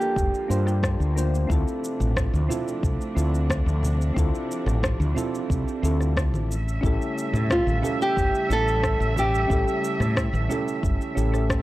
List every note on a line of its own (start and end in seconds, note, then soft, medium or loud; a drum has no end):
0.00 1.46 D3 medium
0.00 1.45 F3 medium
0.00 1.46 G3 medium
0.00 0.48 A#3 medium
0.00 1.46 A#3 medium
0.00 0.49 D4 medium
0.00 0.50 F4 medium
0.00 1.13 G4 medium
0.00 0.46 A4 medium
0.00 1.51 A5 medium
0.00 shaker soft
0.16 0.30 F1 medium
0.16 kick loud
0.16 shaker soft
0.35 shaker soft
0.48 0.95 G2 medium
0.48 0.62 A#3 medium
0.48 0.62 D4 medium
0.48 0.63 F4 medium
0.48 0.63 C5 medium
0.48 shaker medium
0.65 1.12 A#3 medium
0.65 1.12 D4 medium
0.65 1.13 F4 medium
0.65 1.13 G4 medium
0.65 cross-stick soft
0.65 shaker soft
0.83 kick loud
0.83 cross-stick medium
0.83 shaker soft
1.00 1.45 D2 medium
1.00 shaker soft
1.16 1.45 A#3 medium
1.16 1.46 D4 medium
1.16 1.46 F4 medium
1.16 1.47 C5 medium
1.16 shaker medium
1.35 shaker soft
1.47 1.63 D2 medium
1.47 6.46 C3 medium
1.47 6.46 F3 medium
1.47 4.14 A3 medium
1.47 2.45 C4 medium
1.47 6.46 D4 medium
1.47 2.45 E4 medium
1.47 2.46 F4 medium
1.47 kick loud
1.47 shaker soft
1.52 2.47 A4 medium
1.68 shaker soft
1.84 shaker medium
2.00 2.27 A1 medium
2.00 low conga medium
2.00 shaker soft
2.16 kick medium
2.16 cross-stick medium
2.16 shaker soft
2.33 2.47 D2 medium
2.33 high conga medium
2.33 shaker soft
2.49 3.12 C4 medium
2.49 3.12 E4 medium
2.49 3.13 F4 medium
2.49 3.13 A4 medium
2.49 low conga medium
2.49 shaker medium
2.68 shaker soft
2.83 2.97 C2 medium
2.83 kick loud
2.83 shaker soft
3.01 shaker soft
3.15 3.62 D2 medium
3.15 3.30 C4 medium
3.15 3.30 E4 medium
3.15 3.31 F4 medium
3.15 3.31 A4 medium
3.15 shaker medium
3.35 shaker soft
3.50 kick loud
3.50 cross-stick medium
3.50 shaker soft
3.66 4.11 D2 medium
3.66 shaker soft
3.83 low conga medium
3.83 shaker medium
4.02 shaker soft
4.14 4.30 D2 loud
4.14 6.48 G3 medium
4.14 5.11 C4 medium
4.14 5.12 E4 medium
4.14 5.13 F4 medium
4.14 kick loud
4.14 shaker soft
4.19 5.14 A4 loud
4.35 shaker soft
4.52 shaker medium
4.66 4.94 A1 medium
4.66 cross-stick soft
4.66 low conga medium
4.66 shaker soft
4.83 kick medium
4.83 cross-stick loud
4.83 shaker soft
5.00 5.13 D2 medium
5.00 high conga soft
5.00 shaker soft
5.15 5.78 C4 medium
5.15 5.79 E4 medium
5.15 5.79 F4 medium
5.15 5.80 A4 medium
5.15 low conga medium
5.15 shaker medium
5.35 shaker soft
5.50 5.64 C2 medium
5.50 kick medium
5.50 shaker soft
5.68 shaker soft
5.82 6.33 D2 medium
5.82 5.97 C4 medium
5.82 5.97 E4 medium
5.82 5.98 F4 medium
5.82 5.98 A4 medium
5.82 shaker medium
6.01 cross-stick soft
6.01 shaker soft
6.17 kick medium
6.17 cross-stick medium
6.17 shaker soft
6.33 6.78 A1 medium
6.33 high conga medium
6.33 shaker soft
6.49 11.62 C#3 medium
6.49 11.62 G3 medium
6.49 11.62 A3 medium
6.49 11.62 E5 medium
6.49 shaker medium
6.68 shaker soft
6.81 6.97 A1 loud
6.81 7.78 C#4 medium
6.81 7.79 E4 medium
6.81 7.80 G4 medium
6.81 kick loud
6.85 7.80 A4 loud
6.85 shaker soft
7.02 shaker soft
7.18 shaker medium
7.33 7.60 A2 medium
7.33 low conga medium
7.33 shaker soft
7.50 8.02 F4 medium
7.50 kick medium
7.50 cross-stick loud
7.50 shaker soft
7.67 7.80 A1 loud
7.67 high conga medium
7.67 shaker soft
7.82 8.45 C#4 medium
7.82 8.46 E4 medium
7.82 8.46 G4 medium
7.82 8.47 A4 medium
7.82 low conga medium
7.82 shaker medium
8.02 8.52 G4 medium
8.02 shaker soft
8.17 8.30 G1 medium
8.17 kick medium
8.17 shaker soft
8.35 shaker soft
8.49 8.95 A1 medium
8.49 8.63 C#4 medium
8.49 8.64 E4 medium
8.49 8.64 G4 medium
8.49 8.65 A4 medium
8.49 9.14 A4 loud
8.49 shaker medium
8.68 shaker soft
8.83 kick loud
8.83 cross-stick medium
8.83 shaker soft
9.00 9.45 A1 medium
9.00 shaker soft
9.16 11.47 G4 medium
9.16 low conga medium
9.16 shaker medium
9.35 shaker soft
9.47 9.63 A1 loud
9.47 10.45 C#4 medium
9.47 10.45 E4 medium
9.47 10.46 G4 medium
9.47 kick loud
9.47 shaker soft
9.52 10.47 A4 loud
9.68 shaker soft
9.84 shaker medium
10.00 10.27 A2 medium
10.00 cross-stick soft
10.00 low conga medium
10.00 shaker soft
10.17 kick medium
10.17 cross-stick loud
10.17 shaker soft
10.33 10.47 A1 loud
10.33 high conga medium
10.33 shaker soft
10.49 11.12 C#4 medium
10.49 11.13 E4 medium
10.49 11.13 G4 medium
10.49 11.13 A4 medium
10.49 low conga medium
10.49 shaker medium
10.68 shaker soft
10.83 10.97 G1 medium
10.83 kick loud
10.83 shaker soft
11.01 shaker soft
11.15 11.62 A1 medium
11.15 11.29 C#4 medium
11.15 11.29 E4 medium
11.15 11.29 G4 medium
11.15 11.30 A4 medium
11.15 shaker medium
11.32 11.62 C#4 medium
11.32 11.62 E4 medium
11.32 11.62 G4 medium
11.32 11.62 A4 medium
11.32 cross-stick soft
11.32 shaker soft
11.50 kick loud
11.50 cross-stick medium
11.50 shaker soft